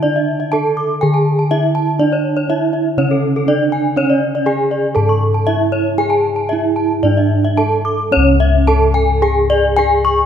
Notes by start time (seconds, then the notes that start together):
Already playing: D3
0.03 D4 D5
0.16 E5
0.40 E5
0.52 D4 A4 A5
0.77 D6
1.01 D3 G#4 G#5
1.14 A5
1.39 A5
1.51 D4 E4 E5
1.75 A5
2.00 D4 D5
2.12 C#5
2.37 C#5
2.50 E4 E5
2.73 E5
2.97 C#3 C#4 C#5
3.11 A4
3.36 A4
3.46 D4 D5
3.72 G#5
3.96 C#4 C#5
4.10 D5
4.35 D5
4.46 D4 G#4 G#5
4.71 D5
4.95 G#2 A4 A5
5.09 C#6
5.34 A5
5.47 D4 E4 E5
5.72 C#5
5.98 G#4 G#5
6.10 A5
6.36 A5
6.49 D4 E4 E5
6.76 A5
7.03 G#2 D4 D5
7.17 E5
7.45 E5
7.57 D4 A4 A5
7.85 D6
8.11 C#4 C#5
8.16 C#2
8.40 E5
8.67 D4 A4 A5
8.94 G#5
9.22 G#4 G#5
9.50 D5
9.77 D4 G#4 G#5
10.05 C#6